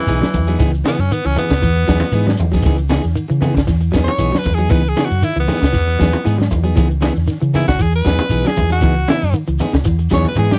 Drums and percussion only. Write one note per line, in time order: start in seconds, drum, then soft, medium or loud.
0.07 ride bell medium
0.07 shekere loud
0.21 snare medium
0.21 high conga medium
0.21 shekere soft
0.33 kick medium
0.33 ride bell medium
0.33 high conga medium
0.33 low conga medium
0.33 shekere medium
0.46 snare soft
0.46 ride bell medium
0.46 shekere soft
0.59 kick loud
0.59 snare soft
0.59 ride bell medium
0.59 low conga medium
0.59 shekere medium
0.74 shekere soft
0.85 snare medium
0.85 ride bell medium
0.85 high conga loud
0.85 shekere medium
1.00 snare soft
1.00 shekere soft
1.12 ride bell soft
1.12 shekere medium
1.26 shekere soft
1.36 ride bell medium
1.36 high conga medium
1.36 low conga medium
1.36 shekere medium
1.50 kick medium
1.50 snare medium
1.50 ride bell medium
1.50 high conga medium
1.50 shekere soft
1.62 kick medium
1.62 ride bell medium
1.62 high conga medium
1.62 shekere loud
1.76 shekere soft
1.88 kick medium
1.88 snare medium
1.88 ride bell medium
1.88 shekere medium
2.00 snare soft
2.00 high conga loud
2.00 shekere soft
2.12 ride bell medium
2.12 shekere loud
2.26 snare medium
2.26 high conga medium
2.26 shekere soft
2.37 ride bell medium
2.37 low conga medium
2.37 shekere medium
2.52 kick medium
2.52 snare soft
2.52 ride bell medium
2.52 shekere soft
2.62 kick loud
2.62 ride bell medium
2.62 low conga medium
2.62 shekere loud
2.67 snare soft
2.78 shekere soft
2.89 snare medium
2.89 ride bell medium
2.89 high conga loud
2.89 shekere medium
3.02 shekere soft
3.06 snare soft
3.15 ride bell medium
3.15 shekere medium
3.30 shekere soft
3.42 open hi-hat medium
3.42 high conga medium
3.42 low conga loud
3.42 shekere medium
3.54 kick medium
3.54 ride bell medium
3.54 high conga medium
3.54 shekere soft
3.58 snare medium
3.67 kick medium
3.67 snare soft
3.67 ride bell medium
3.67 high conga medium
3.67 shekere loud
3.81 shekere soft
3.94 kick medium
3.94 snare medium
3.94 ride bell medium
3.94 low conga medium
3.94 shekere medium
4.06 snare soft
4.06 ride bell medium
4.06 high conga loud
4.06 shekere soft
4.18 ride bell medium
4.18 shekere loud
4.32 snare medium
4.32 high conga medium
4.32 shekere soft
4.43 kick medium
4.43 ride bell medium
4.43 high conga medium
4.43 low conga medium
4.43 shekere medium
4.57 ride bell medium
4.57 shekere soft
4.69 kick loud
4.69 ride bell medium
4.69 low conga medium
4.69 shekere loud
4.84 shekere soft
4.96 snare medium
4.96 ride bell medium
4.96 high conga loud
4.96 shekere medium
5.10 snare soft
5.10 shekere soft
5.22 ride bell medium
5.22 shekere medium
5.36 shekere soft
5.48 snare soft
5.48 open hi-hat medium
5.48 high conga medium
5.48 low conga medium
5.48 shekere medium
5.62 kick medium
5.62 snare medium
5.62 ride bell medium
5.62 shekere soft
5.73 kick medium
5.73 snare soft
5.73 ride bell medium
5.73 high conga medium
5.73 shekere loud
5.89 shekere soft
6.00 kick medium
6.00 snare medium
6.00 ride bell medium
6.00 low conga medium
6.00 shekere medium
6.13 high conga loud
6.13 shekere soft
6.26 ride bell medium
6.26 shekere loud
6.39 snare medium
6.39 high conga medium
6.39 shekere soft
6.50 kick medium
6.50 ride bell medium
6.50 low conga medium
6.50 shekere medium
6.64 ride bell medium
6.64 shekere soft
6.77 kick loud
6.77 ride bell medium
6.77 low conga medium
6.77 shekere loud
6.90 shekere soft
7.02 snare medium
7.02 ride bell medium
7.02 high conga loud
7.02 shekere medium
7.16 snare soft
7.16 shekere soft
7.27 snare soft
7.27 ride bell soft
7.27 shekere medium
7.42 shekere soft
7.54 open hi-hat medium
7.54 high conga medium
7.54 low conga medium
7.54 shekere medium
7.66 kick medium
7.66 snare medium
7.66 ride bell medium
7.66 high conga medium
7.66 shekere soft
7.79 kick medium
7.79 ride bell medium
7.79 high conga medium
7.79 shekere loud
7.92 shekere soft
8.04 kick medium
8.04 snare medium
8.04 ride bell medium
8.04 low conga medium
8.04 shekere medium
8.17 ride bell medium
8.17 high conga loud
8.17 shekere soft
8.29 ride bell medium
8.29 shekere loud
8.44 snare medium
8.44 high conga medium
8.44 shekere soft
8.56 kick medium
8.56 ride bell medium
8.56 high conga medium
8.56 low conga medium
8.56 shekere medium
8.70 snare soft
8.70 ride bell medium
8.70 shekere soft
8.81 kick loud
8.81 ride bell medium
8.81 shekere loud
8.96 shekere soft
9.08 snare medium
9.08 ride bell medium
9.08 high conga loud
9.08 shekere medium
9.22 snare soft
9.22 shekere soft
9.33 ride bell medium
9.33 shekere medium
9.47 shekere soft
9.58 snare soft
9.58 ride bell medium
9.58 high conga medium
9.58 low conga medium
9.58 shekere medium
9.72 kick medium
9.72 snare medium
9.72 ride bell medium
9.72 high conga medium
9.72 shekere soft
9.84 kick medium
9.84 ride bell medium
9.84 high conga medium
9.84 shekere loud
9.99 shekere soft
10.10 kick medium
10.10 snare medium
10.10 ride bell medium
10.10 high conga loud
10.10 shekere medium
10.25 snare soft
10.25 high conga medium
10.25 shekere soft
10.35 ride bell medium
10.35 high conga medium
10.35 shekere medium
10.50 snare medium
10.50 low conga medium
10.50 shekere soft